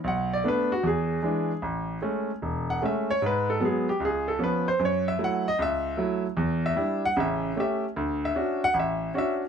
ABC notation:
X:1
M:4/4
L:1/8
Q:"Swing" 1/4=152
K:Alyd
V:1 name="Grand piano"
f =d B F G4 | z4 z f e c | B A G =G ^G A B ^B | c e f d e3 z |
z e2 f e2 e z | z e2 f e2 e z |]
V:2 name="Grand piano"
B,,,2 [A,B,=D] z E,,2 [E,G,D] z | A,,,2 [G,A,C] z E,,,2 [G,A,C] z | G,,2 [F,G,B,] z C,,2 [^E,B,C] z | F,,2 [F,A,E] z C,,2 [F,A,E] z |
E,,2 [=G,=DE] z [A,,,C,]2 [A,C=G] z | =D,,2 [C=DF] z A,,,2 [CDF] z |]